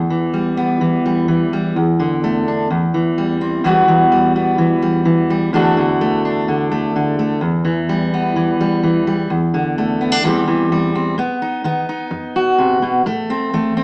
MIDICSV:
0, 0, Header, 1, 2, 480
1, 0, Start_track
1, 0, Key_signature, 1, "minor"
1, 0, Tempo, 471328
1, 1778, Time_signature, 4, 2, 24, 8
1, 14092, End_track
2, 0, Start_track
2, 0, Title_t, "Steel-string acoustic guitar"
2, 0, Program_c, 0, 25
2, 0, Note_on_c, 0, 40, 65
2, 105, Note_on_c, 0, 52, 54
2, 342, Note_on_c, 0, 55, 48
2, 583, Note_on_c, 0, 59, 49
2, 812, Note_off_c, 0, 52, 0
2, 824, Note_on_c, 0, 52, 53
2, 1060, Note_off_c, 0, 55, 0
2, 1075, Note_on_c, 0, 55, 50
2, 1293, Note_off_c, 0, 52, 0
2, 1305, Note_on_c, 0, 52, 54
2, 1547, Note_off_c, 0, 55, 0
2, 1558, Note_on_c, 0, 55, 46
2, 1753, Note_off_c, 0, 52, 0
2, 1781, Note_off_c, 0, 40, 0
2, 1782, Note_off_c, 0, 59, 0
2, 1789, Note_off_c, 0, 55, 0
2, 1794, Note_on_c, 0, 40, 60
2, 2032, Note_on_c, 0, 50, 55
2, 2279, Note_on_c, 0, 57, 51
2, 2525, Note_on_c, 0, 62, 47
2, 2721, Note_off_c, 0, 57, 0
2, 2724, Note_off_c, 0, 62, 0
2, 2742, Note_off_c, 0, 40, 0
2, 2747, Note_off_c, 0, 50, 0
2, 2754, Note_on_c, 0, 40, 61
2, 2996, Note_on_c, 0, 52, 54
2, 3238, Note_on_c, 0, 55, 48
2, 3474, Note_on_c, 0, 60, 49
2, 3679, Note_off_c, 0, 60, 0
2, 3681, Note_off_c, 0, 52, 0
2, 3695, Note_off_c, 0, 40, 0
2, 3707, Note_on_c, 0, 40, 61
2, 3710, Note_off_c, 0, 55, 0
2, 3712, Note_on_c, 0, 52, 51
2, 3721, Note_on_c, 0, 55, 55
2, 3729, Note_on_c, 0, 59, 50
2, 3735, Note_on_c, 0, 66, 59
2, 3942, Note_off_c, 0, 52, 0
2, 3954, Note_on_c, 0, 52, 55
2, 4182, Note_off_c, 0, 55, 0
2, 4194, Note_on_c, 0, 55, 49
2, 4426, Note_off_c, 0, 59, 0
2, 4438, Note_on_c, 0, 59, 47
2, 4654, Note_off_c, 0, 52, 0
2, 4666, Note_on_c, 0, 52, 56
2, 4900, Note_off_c, 0, 55, 0
2, 4913, Note_on_c, 0, 55, 48
2, 5134, Note_off_c, 0, 52, 0
2, 5146, Note_on_c, 0, 52, 56
2, 5389, Note_off_c, 0, 55, 0
2, 5400, Note_on_c, 0, 55, 52
2, 5597, Note_off_c, 0, 52, 0
2, 5618, Note_off_c, 0, 40, 0
2, 5630, Note_on_c, 0, 40, 61
2, 5632, Note_off_c, 0, 59, 0
2, 5633, Note_off_c, 0, 55, 0
2, 5639, Note_on_c, 0, 50, 51
2, 5644, Note_on_c, 0, 57, 51
2, 5652, Note_on_c, 0, 62, 52
2, 5654, Note_off_c, 0, 66, 0
2, 5658, Note_on_c, 0, 66, 62
2, 5863, Note_off_c, 0, 50, 0
2, 5875, Note_on_c, 0, 50, 53
2, 6110, Note_off_c, 0, 57, 0
2, 6122, Note_on_c, 0, 57, 54
2, 6352, Note_off_c, 0, 62, 0
2, 6364, Note_on_c, 0, 62, 48
2, 6590, Note_off_c, 0, 50, 0
2, 6601, Note_on_c, 0, 50, 54
2, 6826, Note_off_c, 0, 57, 0
2, 6838, Note_on_c, 0, 57, 52
2, 7073, Note_off_c, 0, 50, 0
2, 7086, Note_on_c, 0, 50, 56
2, 7310, Note_off_c, 0, 57, 0
2, 7322, Note_on_c, 0, 57, 49
2, 7525, Note_off_c, 0, 57, 0
2, 7526, Note_off_c, 0, 62, 0
2, 7535, Note_off_c, 0, 40, 0
2, 7547, Note_on_c, 0, 40, 63
2, 7556, Note_off_c, 0, 50, 0
2, 7578, Note_off_c, 0, 66, 0
2, 7787, Note_on_c, 0, 52, 53
2, 8037, Note_on_c, 0, 55, 54
2, 8287, Note_on_c, 0, 59, 49
2, 8503, Note_off_c, 0, 52, 0
2, 8515, Note_on_c, 0, 52, 53
2, 8751, Note_off_c, 0, 55, 0
2, 8763, Note_on_c, 0, 55, 52
2, 8984, Note_off_c, 0, 52, 0
2, 8996, Note_on_c, 0, 52, 54
2, 9227, Note_off_c, 0, 55, 0
2, 9239, Note_on_c, 0, 55, 54
2, 9442, Note_off_c, 0, 52, 0
2, 9460, Note_off_c, 0, 40, 0
2, 9472, Note_off_c, 0, 55, 0
2, 9472, Note_on_c, 0, 40, 65
2, 9475, Note_off_c, 0, 59, 0
2, 9715, Note_on_c, 0, 50, 58
2, 9961, Note_on_c, 0, 57, 48
2, 10193, Note_on_c, 0, 59, 46
2, 10304, Note_off_c, 0, 59, 0
2, 10304, Note_on_c, 0, 62, 42
2, 10403, Note_off_c, 0, 57, 0
2, 10415, Note_off_c, 0, 40, 0
2, 10424, Note_off_c, 0, 62, 0
2, 10427, Note_on_c, 0, 40, 65
2, 10429, Note_off_c, 0, 50, 0
2, 10436, Note_on_c, 0, 52, 49
2, 10441, Note_on_c, 0, 55, 53
2, 10454, Note_on_c, 0, 60, 49
2, 10460, Note_on_c, 0, 67, 55
2, 10656, Note_off_c, 0, 52, 0
2, 10668, Note_on_c, 0, 52, 52
2, 10904, Note_off_c, 0, 55, 0
2, 10917, Note_on_c, 0, 55, 51
2, 11142, Note_off_c, 0, 60, 0
2, 11154, Note_on_c, 0, 60, 48
2, 11355, Note_off_c, 0, 52, 0
2, 11359, Note_off_c, 0, 60, 0
2, 11370, Note_off_c, 0, 67, 0
2, 11383, Note_off_c, 0, 40, 0
2, 11383, Note_on_c, 0, 47, 69
2, 11388, Note_off_c, 0, 55, 0
2, 11393, Note_on_c, 0, 59, 58
2, 11630, Note_on_c, 0, 63, 55
2, 11813, Note_off_c, 0, 47, 0
2, 11852, Note_off_c, 0, 59, 0
2, 11856, Note_on_c, 0, 51, 58
2, 11864, Note_on_c, 0, 59, 55
2, 12097, Note_off_c, 0, 63, 0
2, 12109, Note_on_c, 0, 63, 52
2, 12289, Note_off_c, 0, 51, 0
2, 12331, Note_on_c, 0, 42, 60
2, 12586, Note_on_c, 0, 66, 58
2, 12765, Note_off_c, 0, 42, 0
2, 12815, Note_on_c, 0, 48, 56
2, 13055, Note_off_c, 0, 48, 0
2, 13059, Note_on_c, 0, 47, 62
2, 13268, Note_off_c, 0, 59, 0
2, 13270, Note_off_c, 0, 66, 0
2, 13271, Note_off_c, 0, 63, 0
2, 13295, Note_off_c, 0, 47, 0
2, 13299, Note_on_c, 0, 45, 76
2, 13305, Note_on_c, 0, 57, 62
2, 13544, Note_on_c, 0, 60, 61
2, 13727, Note_off_c, 0, 45, 0
2, 13773, Note_off_c, 0, 57, 0
2, 13785, Note_on_c, 0, 52, 57
2, 13786, Note_on_c, 0, 57, 54
2, 14009, Note_off_c, 0, 60, 0
2, 14022, Note_on_c, 0, 60, 52
2, 14092, Note_off_c, 0, 52, 0
2, 14092, Note_off_c, 0, 57, 0
2, 14092, Note_off_c, 0, 60, 0
2, 14092, End_track
0, 0, End_of_file